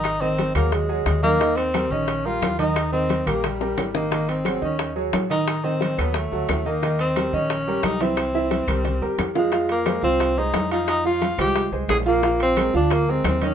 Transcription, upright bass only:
\new Staff \with { instrumentName = "Upright bass" } { \clef bass \time 4/4 \key ees \mixolydian \tempo 4 = 177 aes,,4. ees,4. ees,4~ | ees,4. bes,,4. ees,4~ | ees,4. bes,,4. aes,,4~ | aes,,4. ees,4. a,,4~ |
a,,4. ees,4 d,8 ees,4~ | ees,4. bes,,4. c,4~ | c,4. c,4 e,8 f,4~ | f,4. c,4. f,4~ |
f,4. c,4 c,8 bes,,4~ | bes,,4. d,4. ees,4 | }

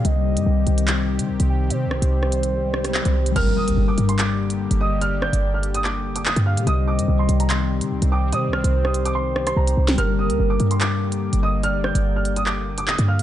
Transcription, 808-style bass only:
\new Staff \with { instrumentName = "808-style bass" } { \clef bass \time 4/4 \key g \minor \tempo 4 = 145 c,8. g,16 c,8 c,4~ c,16 ees16 c,16 c,8. | c16. c,16. c,2~ c,8 c,8. | g,,8. d,16 g,,8 g,4.~ g,16 g,,8.~ | g,,8. g,,2~ g,,8 g,8 bes,16 |
c,8. g,16 c,8 c,4~ c,16 ees16 c,16 c,8. | c16. c,16. c,2~ c,16 c,8 c,8 | g,,8. d,16 g,,8 g,4.~ g,16 g,,8.~ | g,,8. g,,2~ g,,8 g,8 bes,16 | }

